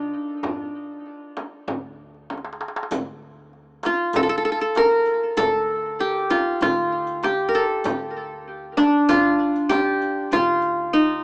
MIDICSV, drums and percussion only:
0, 0, Header, 1, 4, 480
1, 0, Start_track
1, 0, Key_signature, -1, "minor"
1, 0, Tempo, 617920
1, 335, Time_signature, 4, 2, 24, 8
1, 8729, End_track
2, 0, Start_track
2, 0, Title_t, "Darbuka"
2, 334, Note_on_c, 9, 64, 79
2, 412, Note_off_c, 9, 64, 0
2, 461, Note_on_c, 9, 62, 25
2, 539, Note_off_c, 9, 62, 0
2, 821, Note_on_c, 9, 62, 25
2, 899, Note_off_c, 9, 62, 0
2, 1064, Note_on_c, 9, 63, 60
2, 1142, Note_off_c, 9, 63, 0
2, 1306, Note_on_c, 9, 64, 76
2, 1384, Note_off_c, 9, 64, 0
2, 1666, Note_on_c, 9, 62, 24
2, 1743, Note_off_c, 9, 62, 0
2, 1786, Note_on_c, 9, 63, 49
2, 1846, Note_on_c, 9, 62, 50
2, 1864, Note_off_c, 9, 63, 0
2, 1900, Note_on_c, 9, 63, 58
2, 1923, Note_off_c, 9, 62, 0
2, 1963, Note_on_c, 9, 62, 63
2, 1977, Note_off_c, 9, 63, 0
2, 2025, Note_on_c, 9, 63, 70
2, 2041, Note_off_c, 9, 62, 0
2, 2084, Note_on_c, 9, 62, 73
2, 2103, Note_off_c, 9, 63, 0
2, 2147, Note_on_c, 9, 63, 80
2, 2162, Note_off_c, 9, 62, 0
2, 2198, Note_on_c, 9, 62, 85
2, 2225, Note_off_c, 9, 63, 0
2, 2263, Note_on_c, 9, 64, 78
2, 2276, Note_off_c, 9, 62, 0
2, 2341, Note_off_c, 9, 64, 0
2, 2385, Note_on_c, 9, 62, 26
2, 2463, Note_off_c, 9, 62, 0
2, 2506, Note_on_c, 9, 62, 24
2, 2584, Note_off_c, 9, 62, 0
2, 2743, Note_on_c, 9, 62, 28
2, 2821, Note_off_c, 9, 62, 0
2, 2978, Note_on_c, 9, 63, 68
2, 3056, Note_off_c, 9, 63, 0
2, 3216, Note_on_c, 9, 64, 89
2, 3293, Note_off_c, 9, 64, 0
2, 3698, Note_on_c, 9, 63, 69
2, 3776, Note_off_c, 9, 63, 0
2, 4178, Note_on_c, 9, 64, 90
2, 4255, Note_off_c, 9, 64, 0
2, 4302, Note_on_c, 9, 62, 27
2, 4380, Note_off_c, 9, 62, 0
2, 4420, Note_on_c, 9, 62, 28
2, 4497, Note_off_c, 9, 62, 0
2, 4661, Note_on_c, 9, 62, 28
2, 4738, Note_off_c, 9, 62, 0
2, 5144, Note_on_c, 9, 64, 88
2, 5222, Note_off_c, 9, 64, 0
2, 5621, Note_on_c, 9, 63, 69
2, 5698, Note_off_c, 9, 63, 0
2, 6102, Note_on_c, 9, 64, 89
2, 6179, Note_off_c, 9, 64, 0
2, 6217, Note_on_c, 9, 62, 27
2, 6294, Note_off_c, 9, 62, 0
2, 6337, Note_on_c, 9, 62, 27
2, 6415, Note_off_c, 9, 62, 0
2, 6583, Note_on_c, 9, 62, 27
2, 6660, Note_off_c, 9, 62, 0
2, 6819, Note_on_c, 9, 63, 68
2, 6897, Note_off_c, 9, 63, 0
2, 7068, Note_on_c, 9, 64, 84
2, 7145, Note_off_c, 9, 64, 0
2, 7547, Note_on_c, 9, 63, 62
2, 7625, Note_off_c, 9, 63, 0
2, 8026, Note_on_c, 9, 64, 86
2, 8104, Note_off_c, 9, 64, 0
2, 8267, Note_on_c, 9, 62, 27
2, 8345, Note_off_c, 9, 62, 0
2, 8729, End_track
3, 0, Start_track
3, 0, Title_t, "Frame drum"
3, 339, Note_on_c, 9, 64, 75
3, 416, Note_off_c, 9, 64, 0
3, 1062, Note_on_c, 9, 64, 58
3, 1140, Note_off_c, 9, 64, 0
3, 1304, Note_on_c, 9, 64, 80
3, 1382, Note_off_c, 9, 64, 0
3, 1787, Note_on_c, 9, 64, 60
3, 1865, Note_off_c, 9, 64, 0
3, 2266, Note_on_c, 9, 64, 86
3, 2344, Note_off_c, 9, 64, 0
3, 2993, Note_on_c, 9, 64, 70
3, 3070, Note_off_c, 9, 64, 0
3, 3230, Note_on_c, 9, 64, 89
3, 3307, Note_off_c, 9, 64, 0
3, 3708, Note_on_c, 9, 64, 73
3, 3785, Note_off_c, 9, 64, 0
3, 4190, Note_on_c, 9, 64, 80
3, 4268, Note_off_c, 9, 64, 0
3, 4908, Note_on_c, 9, 64, 66
3, 4986, Note_off_c, 9, 64, 0
3, 5145, Note_on_c, 9, 64, 87
3, 5223, Note_off_c, 9, 64, 0
3, 5620, Note_on_c, 9, 64, 64
3, 5698, Note_off_c, 9, 64, 0
3, 6101, Note_on_c, 9, 64, 89
3, 6179, Note_off_c, 9, 64, 0
3, 6823, Note_on_c, 9, 64, 67
3, 6900, Note_off_c, 9, 64, 0
3, 7065, Note_on_c, 9, 64, 80
3, 7143, Note_off_c, 9, 64, 0
3, 7543, Note_on_c, 9, 64, 73
3, 7621, Note_off_c, 9, 64, 0
3, 8023, Note_on_c, 9, 64, 75
3, 8100, Note_off_c, 9, 64, 0
3, 8729, End_track
4, 0, Start_track
4, 0, Title_t, "Riq"
4, 2259, Note_on_c, 9, 54, 67
4, 2337, Note_off_c, 9, 54, 0
4, 2975, Note_on_c, 9, 54, 48
4, 3053, Note_off_c, 9, 54, 0
4, 3208, Note_on_c, 9, 54, 60
4, 3286, Note_off_c, 9, 54, 0
4, 3575, Note_on_c, 9, 54, 19
4, 3653, Note_off_c, 9, 54, 0
4, 3690, Note_on_c, 9, 54, 45
4, 3768, Note_off_c, 9, 54, 0
4, 3926, Note_on_c, 9, 54, 19
4, 4003, Note_off_c, 9, 54, 0
4, 4169, Note_on_c, 9, 54, 60
4, 4247, Note_off_c, 9, 54, 0
4, 4894, Note_on_c, 9, 54, 44
4, 4972, Note_off_c, 9, 54, 0
4, 5132, Note_on_c, 9, 54, 60
4, 5210, Note_off_c, 9, 54, 0
4, 5492, Note_on_c, 9, 54, 20
4, 5570, Note_off_c, 9, 54, 0
4, 5613, Note_on_c, 9, 54, 41
4, 5691, Note_off_c, 9, 54, 0
4, 5854, Note_on_c, 9, 54, 19
4, 5931, Note_off_c, 9, 54, 0
4, 6091, Note_on_c, 9, 54, 63
4, 6169, Note_off_c, 9, 54, 0
4, 6816, Note_on_c, 9, 54, 44
4, 6894, Note_off_c, 9, 54, 0
4, 7057, Note_on_c, 9, 54, 60
4, 7135, Note_off_c, 9, 54, 0
4, 7423, Note_on_c, 9, 54, 16
4, 7501, Note_off_c, 9, 54, 0
4, 7536, Note_on_c, 9, 54, 43
4, 7614, Note_off_c, 9, 54, 0
4, 7781, Note_on_c, 9, 54, 17
4, 7859, Note_off_c, 9, 54, 0
4, 8015, Note_on_c, 9, 54, 65
4, 8093, Note_off_c, 9, 54, 0
4, 8250, Note_on_c, 9, 54, 18
4, 8327, Note_off_c, 9, 54, 0
4, 8492, Note_on_c, 9, 54, 17
4, 8569, Note_off_c, 9, 54, 0
4, 8729, End_track
0, 0, End_of_file